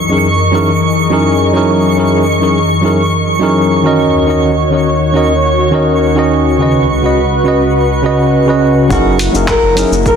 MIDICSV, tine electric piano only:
0, 0, Header, 1, 2, 480
1, 0, Start_track
1, 0, Tempo, 576923
1, 1650, Time_signature, 4, 2, 24, 8
1, 8455, End_track
2, 0, Start_track
2, 0, Title_t, "Tine electric piano"
2, 0, Program_c, 0, 4
2, 75, Note_on_c, 0, 54, 65
2, 80, Note_on_c, 0, 61, 64
2, 85, Note_on_c, 0, 63, 66
2, 94, Note_on_c, 0, 64, 60
2, 97, Note_on_c, 0, 68, 58
2, 104, Note_on_c, 0, 70, 74
2, 212, Note_off_c, 0, 54, 0
2, 214, Note_off_c, 0, 61, 0
2, 217, Note_off_c, 0, 63, 0
2, 222, Note_off_c, 0, 64, 0
2, 223, Note_off_c, 0, 68, 0
2, 227, Note_off_c, 0, 70, 0
2, 426, Note_on_c, 0, 54, 78
2, 431, Note_on_c, 0, 61, 67
2, 438, Note_on_c, 0, 63, 76
2, 443, Note_on_c, 0, 64, 72
2, 454, Note_on_c, 0, 68, 69
2, 458, Note_on_c, 0, 70, 87
2, 576, Note_off_c, 0, 54, 0
2, 578, Note_off_c, 0, 61, 0
2, 581, Note_off_c, 0, 63, 0
2, 584, Note_off_c, 0, 64, 0
2, 589, Note_off_c, 0, 68, 0
2, 591, Note_off_c, 0, 70, 0
2, 912, Note_on_c, 0, 54, 85
2, 918, Note_on_c, 0, 61, 78
2, 925, Note_on_c, 0, 63, 81
2, 930, Note_on_c, 0, 64, 74
2, 936, Note_on_c, 0, 68, 82
2, 943, Note_on_c, 0, 70, 92
2, 1257, Note_off_c, 0, 54, 0
2, 1260, Note_off_c, 0, 61, 0
2, 1264, Note_off_c, 0, 63, 0
2, 1266, Note_off_c, 0, 64, 0
2, 1269, Note_off_c, 0, 68, 0
2, 1272, Note_off_c, 0, 70, 0
2, 1273, Note_on_c, 0, 54, 83
2, 1281, Note_on_c, 0, 61, 80
2, 1287, Note_on_c, 0, 63, 84
2, 1297, Note_on_c, 0, 64, 82
2, 1300, Note_on_c, 0, 68, 76
2, 1306, Note_on_c, 0, 70, 94
2, 1611, Note_off_c, 0, 54, 0
2, 1615, Note_off_c, 0, 61, 0
2, 1618, Note_off_c, 0, 63, 0
2, 1623, Note_off_c, 0, 64, 0
2, 1625, Note_off_c, 0, 68, 0
2, 1628, Note_off_c, 0, 70, 0
2, 1629, Note_on_c, 0, 54, 71
2, 1637, Note_on_c, 0, 61, 69
2, 1644, Note_on_c, 0, 63, 72
2, 1647, Note_on_c, 0, 64, 70
2, 1657, Note_on_c, 0, 68, 68
2, 1661, Note_on_c, 0, 70, 83
2, 1852, Note_off_c, 0, 54, 0
2, 1856, Note_off_c, 0, 61, 0
2, 1860, Note_off_c, 0, 63, 0
2, 1861, Note_off_c, 0, 64, 0
2, 1866, Note_off_c, 0, 68, 0
2, 1868, Note_off_c, 0, 70, 0
2, 1990, Note_on_c, 0, 54, 67
2, 2001, Note_on_c, 0, 61, 61
2, 2006, Note_on_c, 0, 63, 66
2, 2010, Note_on_c, 0, 64, 59
2, 2020, Note_on_c, 0, 68, 66
2, 2023, Note_on_c, 0, 70, 75
2, 2130, Note_off_c, 0, 54, 0
2, 2135, Note_off_c, 0, 61, 0
2, 2138, Note_off_c, 0, 63, 0
2, 2140, Note_off_c, 0, 64, 0
2, 2145, Note_off_c, 0, 68, 0
2, 2146, Note_off_c, 0, 70, 0
2, 2338, Note_on_c, 0, 54, 78
2, 2347, Note_on_c, 0, 61, 71
2, 2354, Note_on_c, 0, 63, 71
2, 2360, Note_on_c, 0, 64, 75
2, 2366, Note_on_c, 0, 68, 69
2, 2375, Note_on_c, 0, 70, 85
2, 2492, Note_off_c, 0, 54, 0
2, 2496, Note_off_c, 0, 61, 0
2, 2500, Note_off_c, 0, 63, 0
2, 2503, Note_off_c, 0, 64, 0
2, 2506, Note_off_c, 0, 68, 0
2, 2510, Note_off_c, 0, 70, 0
2, 2822, Note_on_c, 0, 54, 92
2, 2829, Note_on_c, 0, 61, 78
2, 2836, Note_on_c, 0, 63, 83
2, 2844, Note_on_c, 0, 64, 79
2, 2846, Note_on_c, 0, 68, 78
2, 2855, Note_on_c, 0, 70, 97
2, 3172, Note_off_c, 0, 54, 0
2, 3175, Note_off_c, 0, 61, 0
2, 3179, Note_off_c, 0, 63, 0
2, 3183, Note_off_c, 0, 64, 0
2, 3184, Note_off_c, 0, 68, 0
2, 3187, Note_on_c, 0, 51, 83
2, 3189, Note_off_c, 0, 70, 0
2, 3192, Note_on_c, 0, 61, 77
2, 3200, Note_on_c, 0, 66, 80
2, 3210, Note_on_c, 0, 70, 80
2, 3217, Note_on_c, 0, 75, 93
2, 3528, Note_off_c, 0, 51, 0
2, 3531, Note_off_c, 0, 61, 0
2, 3535, Note_off_c, 0, 66, 0
2, 3540, Note_off_c, 0, 70, 0
2, 3543, Note_off_c, 0, 75, 0
2, 3546, Note_on_c, 0, 51, 76
2, 3552, Note_on_c, 0, 61, 73
2, 3562, Note_on_c, 0, 66, 71
2, 3568, Note_on_c, 0, 70, 68
2, 3577, Note_on_c, 0, 75, 84
2, 3771, Note_off_c, 0, 51, 0
2, 3774, Note_off_c, 0, 61, 0
2, 3778, Note_off_c, 0, 66, 0
2, 3782, Note_off_c, 0, 70, 0
2, 3786, Note_off_c, 0, 75, 0
2, 3911, Note_on_c, 0, 51, 68
2, 3915, Note_on_c, 0, 61, 63
2, 3928, Note_on_c, 0, 66, 65
2, 3932, Note_on_c, 0, 70, 64
2, 3944, Note_on_c, 0, 75, 74
2, 4050, Note_off_c, 0, 51, 0
2, 4052, Note_off_c, 0, 61, 0
2, 4059, Note_off_c, 0, 66, 0
2, 4061, Note_off_c, 0, 70, 0
2, 4066, Note_off_c, 0, 75, 0
2, 4266, Note_on_c, 0, 51, 85
2, 4274, Note_on_c, 0, 61, 73
2, 4285, Note_on_c, 0, 66, 75
2, 4292, Note_on_c, 0, 70, 76
2, 4299, Note_on_c, 0, 75, 92
2, 4416, Note_off_c, 0, 51, 0
2, 4419, Note_off_c, 0, 61, 0
2, 4425, Note_off_c, 0, 66, 0
2, 4429, Note_off_c, 0, 70, 0
2, 4432, Note_off_c, 0, 75, 0
2, 4750, Note_on_c, 0, 51, 90
2, 4758, Note_on_c, 0, 61, 83
2, 4765, Note_on_c, 0, 66, 78
2, 4774, Note_on_c, 0, 70, 81
2, 4783, Note_on_c, 0, 75, 90
2, 5096, Note_off_c, 0, 51, 0
2, 5100, Note_off_c, 0, 61, 0
2, 5104, Note_off_c, 0, 66, 0
2, 5108, Note_off_c, 0, 70, 0
2, 5112, Note_off_c, 0, 75, 0
2, 5115, Note_on_c, 0, 51, 90
2, 5125, Note_on_c, 0, 61, 82
2, 5132, Note_on_c, 0, 66, 84
2, 5141, Note_on_c, 0, 70, 78
2, 5148, Note_on_c, 0, 75, 99
2, 5452, Note_off_c, 0, 51, 0
2, 5457, Note_off_c, 0, 61, 0
2, 5460, Note_off_c, 0, 66, 0
2, 5465, Note_off_c, 0, 70, 0
2, 5469, Note_off_c, 0, 75, 0
2, 5474, Note_on_c, 0, 49, 80
2, 5486, Note_on_c, 0, 61, 71
2, 5493, Note_on_c, 0, 66, 71
2, 5502, Note_on_c, 0, 71, 72
2, 5511, Note_on_c, 0, 75, 85
2, 5695, Note_off_c, 0, 49, 0
2, 5701, Note_off_c, 0, 61, 0
2, 5704, Note_off_c, 0, 66, 0
2, 5708, Note_off_c, 0, 71, 0
2, 5713, Note_off_c, 0, 75, 0
2, 5838, Note_on_c, 0, 49, 71
2, 5847, Note_on_c, 0, 61, 62
2, 5853, Note_on_c, 0, 66, 62
2, 5866, Note_on_c, 0, 71, 63
2, 5874, Note_on_c, 0, 75, 79
2, 5974, Note_off_c, 0, 49, 0
2, 5978, Note_off_c, 0, 61, 0
2, 5981, Note_off_c, 0, 66, 0
2, 5987, Note_off_c, 0, 71, 0
2, 5991, Note_off_c, 0, 75, 0
2, 6189, Note_on_c, 0, 49, 78
2, 6197, Note_on_c, 0, 61, 75
2, 6205, Note_on_c, 0, 66, 73
2, 6211, Note_on_c, 0, 71, 74
2, 6222, Note_on_c, 0, 75, 95
2, 6337, Note_off_c, 0, 49, 0
2, 6341, Note_off_c, 0, 61, 0
2, 6345, Note_off_c, 0, 66, 0
2, 6348, Note_off_c, 0, 71, 0
2, 6353, Note_off_c, 0, 75, 0
2, 6674, Note_on_c, 0, 49, 86
2, 6680, Note_on_c, 0, 61, 75
2, 6690, Note_on_c, 0, 66, 83
2, 6698, Note_on_c, 0, 71, 77
2, 6706, Note_on_c, 0, 75, 98
2, 7018, Note_off_c, 0, 49, 0
2, 7021, Note_off_c, 0, 61, 0
2, 7026, Note_off_c, 0, 66, 0
2, 7030, Note_off_c, 0, 71, 0
2, 7034, Note_off_c, 0, 75, 0
2, 7038, Note_on_c, 0, 49, 88
2, 7048, Note_on_c, 0, 61, 81
2, 7055, Note_on_c, 0, 66, 87
2, 7063, Note_on_c, 0, 71, 83
2, 7073, Note_on_c, 0, 75, 99
2, 7374, Note_off_c, 0, 49, 0
2, 7379, Note_off_c, 0, 61, 0
2, 7382, Note_off_c, 0, 66, 0
2, 7386, Note_off_c, 0, 71, 0
2, 7391, Note_off_c, 0, 75, 0
2, 7393, Note_on_c, 0, 54, 90
2, 7401, Note_on_c, 0, 61, 77
2, 7409, Note_on_c, 0, 63, 80
2, 7412, Note_on_c, 0, 64, 80
2, 7421, Note_on_c, 0, 68, 80
2, 7427, Note_on_c, 0, 70, 102
2, 7614, Note_off_c, 0, 54, 0
2, 7618, Note_off_c, 0, 61, 0
2, 7622, Note_off_c, 0, 63, 0
2, 7623, Note_off_c, 0, 64, 0
2, 7628, Note_off_c, 0, 68, 0
2, 7631, Note_off_c, 0, 70, 0
2, 7758, Note_on_c, 0, 54, 83
2, 7764, Note_on_c, 0, 61, 73
2, 7769, Note_on_c, 0, 63, 74
2, 7779, Note_on_c, 0, 64, 67
2, 7784, Note_on_c, 0, 68, 71
2, 7790, Note_on_c, 0, 70, 90
2, 7893, Note_off_c, 0, 54, 0
2, 7897, Note_off_c, 0, 61, 0
2, 7899, Note_off_c, 0, 63, 0
2, 7904, Note_off_c, 0, 64, 0
2, 7906, Note_off_c, 0, 68, 0
2, 7910, Note_off_c, 0, 70, 0
2, 8116, Note_on_c, 0, 54, 87
2, 8121, Note_on_c, 0, 61, 81
2, 8128, Note_on_c, 0, 63, 84
2, 8133, Note_on_c, 0, 64, 82
2, 8140, Note_on_c, 0, 68, 85
2, 8147, Note_on_c, 0, 70, 98
2, 8260, Note_off_c, 0, 54, 0
2, 8263, Note_off_c, 0, 61, 0
2, 8267, Note_off_c, 0, 63, 0
2, 8269, Note_off_c, 0, 64, 0
2, 8272, Note_off_c, 0, 68, 0
2, 8276, Note_off_c, 0, 70, 0
2, 8455, End_track
0, 0, End_of_file